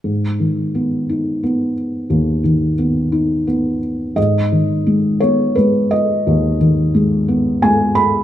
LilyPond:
<<
  \new Staff \with { instrumentName = "Felt piano" } { \time 3/4 \key gis \minor \tempo 4 = 88 r2. | r2. | dis''4. cis''8 b'8 dis''8~ | dis''2 gis''8 b''8 | }
  \new Staff \with { instrumentName = "Felt piano" } { \clef bass \time 3/4 \key gis \minor gis,8 dis8 b8 dis'8 b4 | dis,8 dis8 b8 dis'8 b4 | gis,8 dis8 gis8 b8 gis4 | dis,8 dis8 gis8 b8 gis4 | }
>>